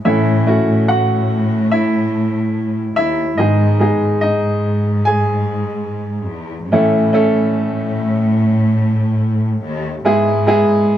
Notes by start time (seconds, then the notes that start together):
0.05 A2 E3 A3 C#4 E4 A4 E5
0.46 A3 C#4 E4 F#4
0.68 A2
0.88 F#4 F#5
1.72 E4 E5
2.96 D#2 E4 E5
3.38 G#2 D#3 G#3 B3 D#4 G#4 D#5
3.80 G#3 B3 D#4 G#4
4.01 G#2
4.21 D#4 D#5
5.05 G#4 G#5
6.31 E2
6.72 A2 E3 A3 C#4 E4 A4
7.13 A3 C#4 E4 A4
7.35 A2
9.64 D#2
10.05 G#2 G#3 B3 E4 G#4
10.47 G#3 B3 E4 G#4
10.68 G#2